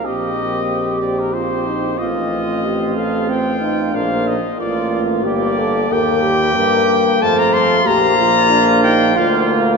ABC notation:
X:1
M:3/4
L:1/16
Q:1/4=92
K:Bb
V:1 name="Trumpet"
e6 d B c4 | e6 f2 g4 | f2 e2 d3 z d4 | g8 a b c'2 |
b6 g2 f2 z2 |]
V:2 name="French horn"
G8 F2 E2 | F4 G2 A2 C2 E2 | D2 z2 F4 G2 A2 | B2 G2 B4 A4 |
G2 F2 D2 E2 F4 |]
V:3 name="Trumpet"
G8 G4 | F12 | F2 z2 F4 G4 | G8 F4 |
F8 F4 |]
V:4 name="Trombone"
C8 C4 | C12 | B,2 z2 B,4 B,4 | B,8 A,4 |
B,8 B,4 |]
V:5 name="Bass trombone" clef=bass
B,,,12 | A,,,12 | B,,,2 z2 A,,,4 G,,,4 | E,,4 G,,4 F,,4 |
B,,,8 D,,4 |]